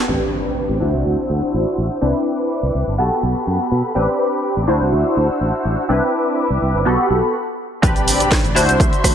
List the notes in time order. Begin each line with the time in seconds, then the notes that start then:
0.08 A1 C4 D4 G4 B4 G5 B5 D6, impact
0.69 A1
0.80 D2 D4 E4 F#4 C5 F#5 E6
0.93 C2
1.05 D2
1.30 D2
1.42 muted fingered electric bass stroke
1.54 A1
1.78 A1
2.01 C2 C4 D4 E4 B4 E5 D6
2.63 C2
2.75 C2
2.87 G1
2.98 B1 B3 F#4 G4 A4 F#5 B5
3.23 B1
3.47 F#2
3.71 B2
3.95 A1 C4 D4 G4 B4 G5 D6
4.57 A1
4.67 D2 D4 E4 F#4 C5 F#5 E6
4.81 C2
4.93 D2
5.17 D2
5.29 muted fingered electric bass stroke
5.41 A1
5.65 A1
5.89 C2 C4 D4 E4 B4 E5 D6
6.50 C2
6.62 C2
6.74 G1
6.85 B1 B3 F#4 G4 A4 F#5 B5
7.10 B1
7.82 A1 C4 D4 G4 B4 D5 B5, kick, closed hi-hat, impact, shaker
7.96 closed hi-hat, shaker
8.08 open hi-hat, shaker
8.20 closed hi-hat, shaker
8.31 kick, snare, closed hi-hat, shaker
8.44 A1, closed hi-hat, shaker
8.55 D2 D4 E4 F#4 C5 E5 C6, cross-stick, open hi-hat, shaker
8.68 C2, closed hi-hat, shaker
8.80 kick, closed hi-hat, shaker
8.93 closed hi-hat, shaker
9.04 D2, kick, cross-stick, open hi-hat, shaker